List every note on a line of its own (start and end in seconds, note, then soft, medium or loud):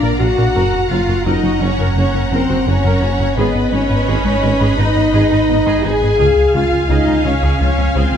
0.00 0.57 A#1 medium
0.00 0.09 A#1 medium
0.00 0.13 A#2 medium
0.00 0.13 A#3 medium
0.00 0.20 D4 medium
0.00 0.19 A#4 medium
0.00 0.20 D5 medium
0.00 0.51 D5 medium
0.00 0.51 F5 medium
0.00 3.33 A#5 medium
0.19 0.26 A#1 medium
0.19 0.27 A#1 medium
0.19 0.31 A#2 medium
0.19 0.31 D4 medium
0.19 0.26 F4 medium
0.19 0.89 F#4 medium
0.19 0.89 F#4 loud
0.19 0.90 F#5 medium
0.37 0.44 A#1 medium
0.37 0.49 A#2 medium
0.37 0.45 D4 medium
0.37 0.49 A#4 medium
0.55 0.62 F#1 medium
0.55 3.39 F#1 medium
0.55 0.66 F#2 medium
0.55 0.67 F#3 medium
0.55 0.72 A#4 medium
0.55 3.34 F#5 medium
0.73 0.84 F#2 medium
0.90 0.97 F#1 medium
0.90 1.02 F#3 medium
0.90 1.02 C#4 medium
0.90 0.98 C#4 medium
0.90 1.25 F4 medium
0.90 1.26 F5 medium
1.08 1.15 F#1 medium
1.08 1.19 F#2 medium
1.08 1.19 A#3 medium
1.08 1.16 F#4 medium
1.25 1.33 F#1 medium
1.25 1.36 F#2 medium
1.25 1.37 F#3 loud
1.25 1.61 D#4 medium
1.25 1.60 D#4 medium
1.25 1.42 A#4 medium
1.25 1.60 D#5 medium
1.43 1.50 F#1 medium
1.43 1.54 F#3 medium
1.43 1.55 C#4 medium
1.43 1.51 F#4 medium
1.61 1.68 F#1 medium
1.61 1.69 F#1 medium
1.61 1.72 F#3 medium
1.61 1.95 C#4 medium
1.61 1.69 C#4 medium
1.61 1.72 C#4 medium
1.61 1.95 C#5 medium
1.78 1.86 F#1 medium
1.78 1.89 F#2 medium
1.78 1.90 F#3 medium
1.78 1.96 A#4 medium
1.96 2.03 F#1 medium
1.96 2.04 F#1 medium
1.96 2.07 F#2 medium
1.96 2.08 A#3 medium
1.96 2.31 C#4 medium
1.96 2.04 F#4 medium
1.96 2.31 C#5 medium
2.14 2.21 F#1 medium
2.14 2.25 F#2 medium
2.14 2.26 A#3 medium
2.14 2.22 C#4 medium
2.31 2.38 F#1 medium
2.31 2.39 F#1 medium
2.31 2.42 F#2 medium
2.31 2.43 F#3 medium
2.31 2.67 C4 medium
2.31 2.49 A#4 medium
2.31 2.66 C5 medium
2.49 2.56 F#1 medium
2.49 2.60 F#2 medium
2.49 2.60 F#4 medium
2.49 2.57 F#4 medium
2.66 2.74 F#1 medium
2.66 2.75 F#1 medium
2.66 2.78 F#2 medium
2.66 2.78 A#3 medium
2.66 3.38 C#4 loud
2.66 3.38 C#4 medium
2.66 2.75 C#4 medium
2.66 3.36 C#5 medium
2.84 2.91 F#1 medium
2.84 2.95 F#2 medium
2.84 2.95 F#3 medium
2.84 3.01 A#4 medium
3.02 3.09 F#1 medium
3.02 3.10 F#1 medium
3.02 3.13 F#2 medium
3.02 3.13 A#3 medium
3.02 3.10 F#4 medium
3.20 3.27 F#1 medium
3.20 3.30 F#2 medium
3.20 3.27 C#4 medium
3.20 3.31 F#4 medium
3.37 3.44 G#1 medium
3.37 6.21 G#1 medium
3.37 3.45 G#1 medium
3.37 3.48 G#2 medium
3.37 3.48 G#3 loud
3.37 3.72 B3 medium
3.37 3.54 G#4 medium
3.37 3.73 B4 medium
3.37 6.16 B4 medium
3.37 6.20 D#5 medium
3.37 6.20 B5 medium
3.55 3.66 G#2 medium
3.71 3.79 G#1 medium
3.71 3.80 G#1 medium
3.71 3.83 G#3 medium
3.71 3.80 B3 soft
3.71 4.78 C#4 loud
3.71 4.77 C#4 medium
3.71 3.84 D#4 medium
3.71 4.79 C#5 medium
3.90 3.97 G#1 medium
3.90 4.01 G#2 medium
3.90 4.01 B3 medium
3.90 3.98 D#4 medium
4.07 4.15 G#1 medium
4.07 4.16 G#1 medium
4.07 4.19 G#2 medium
4.07 4.19 G#3 medium
4.07 4.25 G#4 medium
4.25 4.32 G#1 medium
4.25 4.36 G#3 medium
4.25 4.36 D#4 medium
4.25 4.33 D#4 medium
4.43 4.50 G#1 medium
4.43 4.51 G#1 medium
4.43 4.54 G#3 medium
4.43 4.50 B3 soft
4.43 4.54 D#4 medium
4.59 4.67 G#1 medium
4.59 4.72 G#2 medium
4.59 4.72 G#3 medium
4.59 4.78 G#4 medium
4.77 4.85 G#1 medium
4.77 4.86 G#1 medium
4.77 4.89 G#2 medium
4.77 4.90 B3 medium
4.77 5.84 D#4 loud
4.77 4.86 D#4 medium
4.77 5.83 D#4 medium
4.77 5.85 D#5 medium
4.95 5.02 G#1 medium
4.95 5.07 G#2 medium
4.95 5.03 B3 medium
4.95 5.07 B3 medium
5.13 5.20 G#1 medium
5.13 5.22 G#1 medium
5.13 5.25 G#2 loud
5.13 5.24 G#3 medium
5.13 5.30 G#4 medium
5.31 5.39 G#1 medium
5.31 5.42 G#2 medium
5.31 5.39 D#4 medium
5.31 5.42 G#4 medium
5.49 5.56 G#1 medium
5.49 5.60 G#2 medium
5.49 5.60 B3 medium
5.49 5.56 B3 medium
5.66 5.73 G#1 medium
5.66 5.78 G#2 medium
5.66 5.77 G#3 medium
5.66 5.83 G#4 medium
5.83 5.91 G#1 medium
5.83 5.95 G#2 medium
5.83 5.95 B3 medium
5.83 5.91 D#4 medium
5.83 6.54 G#4 loud
5.83 6.55 G#4 medium
5.83 6.55 G#5 medium
6.01 6.09 G#1 medium
6.01 6.13 G#2 medium
6.01 6.09 B3 medium
6.01 6.13 G#4 medium
6.19 8.17 C#2 medium
6.19 6.30 C#2 medium
6.19 6.27 C#2 medium
6.19 6.30 C#3 medium
6.19 6.36 G#4 medium
6.19 8.17 F5 medium
6.19 8.17 G#5 medium
6.37 6.48 C#2 medium
6.54 6.62 C#2 medium
6.54 6.66 C#3 medium
6.54 6.66 G#3 medium
6.54 6.62 C#4 medium
6.54 6.90 F4 medium
6.54 6.90 F5 medium
6.72 6.83 C#2 medium
6.72 6.79 C#2 medium
6.72 6.83 F3 medium
6.72 6.79 F4 medium
6.89 7.00 C#2 medium
6.89 6.97 C#2 medium
6.89 7.01 C#3 loud
6.89 7.25 D#4 medium
6.89 7.26 D#4 medium
6.89 7.06 G#4 medium
6.89 7.25 D#5 medium
7.07 7.15 C#2 soft
7.07 7.18 C#3 medium
7.07 7.18 G#3 medium
7.07 7.14 F4 medium
7.24 7.32 C#2 medium
7.24 7.33 C#2 medium
7.24 7.35 C#3 medium
7.24 7.36 G#3 medium
7.24 7.32 C#4 medium
7.24 7.59 C#4 medium
7.24 7.60 C#5 medium
7.42 7.53 C#2 medium
7.42 7.50 C#2 medium
7.42 7.54 C#3 medium
7.42 7.59 G#4 medium
7.60 7.68 C#2 medium
7.60 7.71 C#2 medium
7.60 7.68 C#2 medium
7.60 7.72 F3 medium
7.60 7.95 C#4 medium
7.60 7.68 F4 medium
7.60 7.96 C#5 medium
7.78 7.89 C#2 medium
7.78 7.85 C#2 medium
7.78 7.89 F3 medium
7.78 7.85 C#4 medium
7.95 8.02 C#2 medium
7.95 8.06 C#2 loud
7.95 8.03 C#2 medium
7.95 8.07 C#3 medium
7.95 8.17 C4 medium
7.95 8.12 G#4 medium
7.95 8.17 C5 medium
8.13 8.17 C#2 medium
8.13 8.17 C#4 medium